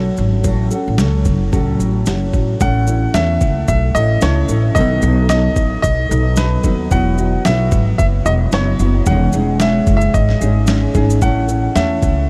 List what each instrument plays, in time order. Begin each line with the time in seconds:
Already playing: nylon-string guitar F#3 C#4 F#4 A4
0.17 upright bass G#1, shaker
0.43 upright bass A1, nylon-string guitar A2 F#3 C#4 F#4 A4, kick, shaker
0.71 nylon-string guitar C#4 F#4 A4, shaker
0.88 upright bass A1
0.98 upright bass C#2, nylon-string guitar F#3 C#4 F#4 A4, snare, shaker
1.25 upright bass F#1, kick, shaker
1.52 upright bass C#2, nylon-string guitar A2 F#3 C#4 F#4 A4, kick, shaker
1.79 upright bass A1, shaker
2.06 upright bass F#1, nylon-string guitar F#3 C#4 F#4 A4, snare, shaker
2.33 upright bass A1, kick, shaker
2.60 upright bass A1, nylon-string guitar A2 A3 C#4 E4 A4, upright piano F#5, kick, shaker
2.87 nylon-string guitar C#4 E4 A4, shaker
3.14 upright bass E2, nylon-string guitar A3 C#4 E4 A4, upright piano E5, snare, shaker
3.41 upright bass C#2, kick, shaker
3.68 upright bass B1, upright piano E5, kick, shaker
3.95 upright bass A1, nylon-string guitar C#4 E4 A4, upright piano D#5, shaker
4.21 upright bass C#2, nylon-string guitar A3 C#4 E4 A4, upright piano C#5, snare, shaker
4.49 upright bass A1, nylon-string guitar C#4 E4 A4, shaker
4.75 upright bass B1, nylon-string guitar B2 D#3 F#3 B3 D#4 A4, upright piano D#5, kick, shaker
5.02 upright bass B1, nylon-string guitar F#3 B3 D#4 A4, shaker
5.29 nylon-string guitar F#3 B3 D#4 A4, upright piano D#5, snare, shaker
5.56 upright bass A1, kick, shaker
5.82 upright bass B1, upright piano D#5, kick, shaker
6.09 upright bass B1, nylon-string guitar F#3 B3 D#4 A4, shaker
6.36 nylon-string guitar F#3 B3 D#4 A4, upright piano B4, snare, shaker
6.63 upright bass D#2, nylon-string guitar F#3 B3 D#4 A4, kick, shaker
6.90 upright bass E1, nylon-string guitar E2 E3 F#3 B3 E4 F#4, upright piano F#5, kick, shaker
7.17 nylon-string guitar F#3 B3 E4 F#4, shaker
7.45 upright bass B1, nylon-string guitar F#3 B3 E4 F#4, upright piano E5, snare, shaker
7.72 upright bass G#1, kick, shaker
7.98 upright bass F#1, upright piano E5, kick, shaker
8.25 upright bass E1, nylon-string guitar F#3 B3 E4 F#4, upright piano D#5, shaker
8.52 upright bass F#1, nylon-string guitar F#3 B3 E4 F#4, upright piano C#5, snare, shaker
8.79 upright bass F#1, nylon-string guitar F#3 B3 E4 F#4, shaker
9.06 upright bass E1, nylon-string guitar E2 E3 G#3 C#4 D#4 G#4, upright piano F#5, kick, shaker
9.33 upright bass E1, nylon-string guitar G#3 C#4 D#4 G#4, shaker
9.60 nylon-string guitar G#3 C#4 G#4, upright piano E5, snare, shaker
9.87 upright bass F#1, kick, shaker
9.97 upright piano E5
10.01 shaker
10.14 upright bass G#1, upright piano D#5, kick, shaker
10.29 snare
10.40 upright bass G#1, nylon-string guitar G#3 C#4 D#4 G#4, shaker
10.67 nylon-string guitar G#3 C#4 D#4 G#4, snare, shaker
10.95 upright bass G#1, nylon-string guitar G#3 C#4 D#4 G#4, kick, shaker
11.10 shaker
11.22 upright bass A1, nylon-string guitar A2 A3 C#4 E4 A4, upright piano F#5, kick, shaker
11.48 nylon-string guitar C#4 E4 A4, shaker
11.76 upright bass E2, nylon-string guitar A3 C#4 E4 A4, upright piano E5, snare, shaker
12.02 upright bass C#2, kick, shaker